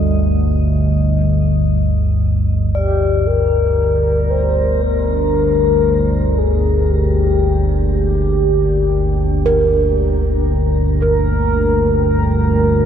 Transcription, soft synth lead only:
2.74 G4
3.27 A#4
4.30 C5
4.82 A#4
6.38 G#4
6.91 G4
7.92 G4
11.02 A#4
12.04 A#4

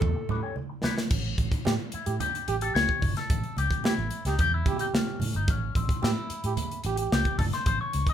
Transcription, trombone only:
1.65 G4
2.06 G4
2.48 G4
2.62 G4
3.84 G4
4.26 G4
4.67 G4
4.79 G4
6.02 G4
6.45 G4
6.86 G4
6.99 G4

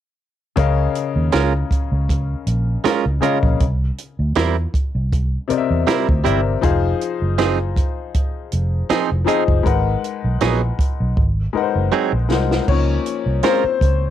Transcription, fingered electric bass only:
0.58 C#2
1.16 D#2
1.34 C#2
1.92 C#2
2.47 A#1
2.85 muted fingered electric bass stroke
3.06 C#2
3.43 A#1
3.61 C2
4.19 D2
4.36 E2
4.95 C2
5.50 muted fingered electric bass stroke
5.70 E2
6.09 D2
6.26 G1
6.64 F1
7.22 F#1
8.53 F1
8.91 muted fingered electric bass stroke
9.12 F1
9.48 F#1
9.66 G#1
10.24 B1
10.42 A#1
11.00 B1
11.17 G#1
11.55 muted fingered electric bass stroke
11.75 F#1
12.13 A#1
12.30 C2
12.68 C#2
13.26 C2
13.64 muted fingered electric bass stroke
13.81 C#2

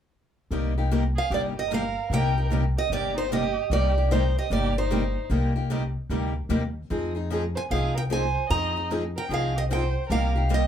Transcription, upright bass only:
0.51 C2
1.30 G1
2.10 C2
2.90 G1
3.70 C2
4.50 G1
5.30 C2
6.09 D2
6.49 D#2
6.90 F2
7.71 C2
8.50 F2
9.29 C2
10.10 C2

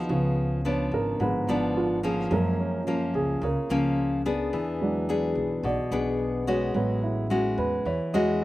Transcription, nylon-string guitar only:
Already playing: F3 B3
0.09 C#3
0.65 F3 B3 D4
1.20 G#2
1.48 F3 B3 D4
2.03 F3 A#3 C#4
2.32 F#2
2.87 F3 A#3 C#4
3.43 C#3
3.70 F3 A#3 C#4
4.26 B3 D4 G#4
4.53 E3
5.09 B3 D4 G#4
5.64 B2
5.92 B3 D4 G#4
6.47 G#3 C#4 F#4
6.75 A2
7.30 G#3 C#4 F#4
7.86 E3
8.14 G#3 C#4 F#4

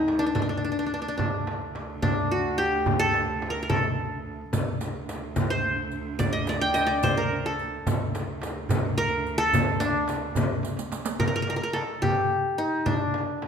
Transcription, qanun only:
Already playing: C4 D#4
0.19 D4
0.26 D4
0.35 D4
0.42 D4
0.49 D4
0.57 D4
0.65 D4
0.72 D4
0.79 D4
0.86 D4
0.94 D4
1.02 D4
1.08 D4
1.17 D4
2.02 D4
2.31 F#4
2.58 G4
2.99 A4
3.50 A#4
3.63 A#4
3.69 A4
5.50 C5
6.19 D5
6.33 D#5
6.49 D5
6.61 G5
6.74 D#5
6.87 D5
7.03 C5
7.17 A#4
7.46 A4
8.98 A#4
9.38 A4
9.80 D4
11.20 A#4
11.28 A#4
11.36 A#4
11.42 A#4
11.50 A#4
11.56 A#4
11.63 A#4
11.73 A4
12.02 G4
12.58 D#4
12.86 D4

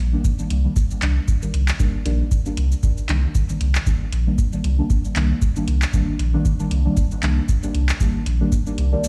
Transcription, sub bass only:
0.00 A#1
0.50 C2
1.02 C2
1.54 C2
2.06 A#1
2.57 C2
3.09 C2
3.61 C2
4.12 A#1
4.64 C2
5.16 C2
5.68 C2
6.19 A#1
6.71 C2
7.23 C2
7.75 C2
8.26 A#1
8.78 C2

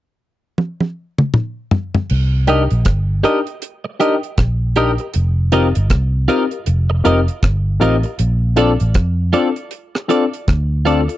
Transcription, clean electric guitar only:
2.48 G4 A#4 D#5
3.24 G4 A#4 D#5
3.85 muted clean electric guitar stroke
4.00 G4 A#4 D#5
4.76 G4 A#4 D#5
5.00 muted clean electric guitar stroke
5.53 F4 A#4 D#5
6.28 F4 A#4 D#5
6.90 muted clean electric guitar stroke
7.05 F4 A#4 D#5
7.81 F4 A#4 D#5
8.04 muted clean electric guitar stroke
8.57 F4 A4 D5
9.33 F4 A4 D5
9.95 muted clean electric guitar stroke
10.09 F4 A4 D5
10.85 F4 A4 D5
11.08 muted clean electric guitar stroke

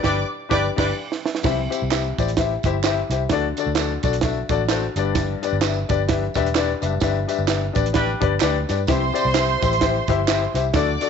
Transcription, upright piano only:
0.03 D4 G4 B4 D5
0.49 D4 G4 B4 D5
0.76 D4 G4 B4 D5
1.43 C3 E4 G4 C5 E5
1.69 E4 G4 C5 E5
1.90 E4 G4 C5 E5
2.18 E4 G4 C5 D5
2.38 E4 G4 C5 E5
2.65 E4 G4 C5 E5
2.85 E4 G4 C5 E5
3.10 E4 G4 C5 E5
3.30 D3 D4 F#4 A4 D5
3.58 D4 F#4 A4 D5
3.76 D4 F#4 A4 D5
4.03 D4 F#4 A4 D5
4.23 D4 F#4 A4 E5
4.49 D4 F#4 A4 D5
4.69 D4 F#4 A4 C5
4.97 G2 D4 G4 B4 D5
5.43 D4 G4 B4 D5
5.61 D4 G4 B4 E5
5.89 D4 G4 B4 D5
6.08 D4 G4 B4 E5
6.35 D4 G4 B4 E5
6.56 D4 G4 B4 D5
6.81 G2 D4 G4 B4 E5
7.02 D4 G4 B4 E5
7.28 D4 G4 B4 E5
7.47 D4 G4 B4 E5
7.73 D4 G4 B4 D5
7.93 D4 G4 B4 D5
8.20 D4 G4 B4 D5
8.41 D4 G4 B4 D5
8.69 D4 G4 B4 D5
8.88 C3 E4 G4 C5 E5
9.13 E4 G4 C5 D5
9.33 E4 G4 C5 E5
9.61 E4 G4 C5 E5
9.80 E4 G4 C5 E5
10.09 E4 G4 C5 E5
10.27 E4 G4 C5 E5
10.54 E4 G4 C5 E5
10.74 D3 D4 F#4 A4 D5
11.01 D4 F#4 A4 D5

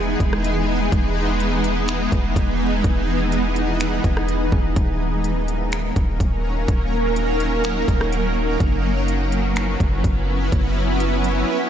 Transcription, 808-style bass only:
Already playing: E1
0.20 E1
0.92 E1
2.12 E1
2.36 E1
2.84 E1
4.04 E1
4.52 E1
4.76 D#1
5.96 D#1
6.20 D#1
6.68 D#1
7.88 D#1
8.60 F#1
9.80 F#1
10.04 F#1
10.52 F#1

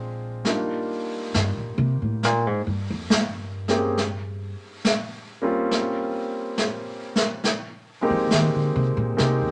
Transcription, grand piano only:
Already playing: G#3 C4 D4 F4
0.45 G3 A#3 D4 D#4 F4
3.68 A#3 C4 C#4 G4 G#4
5.42 G3 A#3 C4 C#4 F4
8.01 G#3 A#3 C4 D#4 G4
9.17 G#3 A#3 C4 D#4 G4

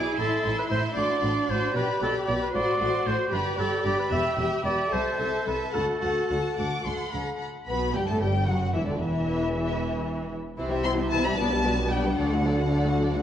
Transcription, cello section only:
0.18 A2
0.45 A2
0.70 A2
0.96 A2
1.23 A2
1.49 A2
1.75 B2
2.02 B2
2.27 B2
2.54 A2
2.80 A2
3.06 A2
3.33 G2
3.58 G2
3.84 G2
4.10 E2
4.37 E2
4.64 E2
4.92 C2
5.20 C2
5.47 C2
5.75 D2
6.03 D2
6.30 D2
6.58 D2
6.86 D2
7.13 D2
7.68 B2
7.94 G2
8.08 A2
8.21 G2
8.47 F#2
8.74 E2
8.87 D2
9.01 E2
10.57 C3
11.37 B2
12.18 D3

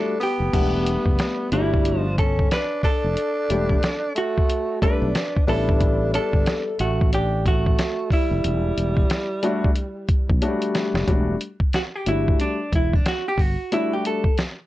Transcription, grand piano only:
Already playing: G3 A3 D4 F#4
0.53 G3 A3 D4 F#5
1.52 G3 A3 D4 F4
1.60 F#4
3.50 G3 A3 D4 G4
4.82 G3 A3 D4 A4
5.48 G3 B3 C#4 E4
5.55 D4
9.43 G3 A3 D4 F#4
10.41 F#3 A3 D4 F#4
10.48 G3
11.07 G3 A3 D4 F#4
12.06 G3 A3 D4 F#4
13.72 G3 A3 D4 F#4

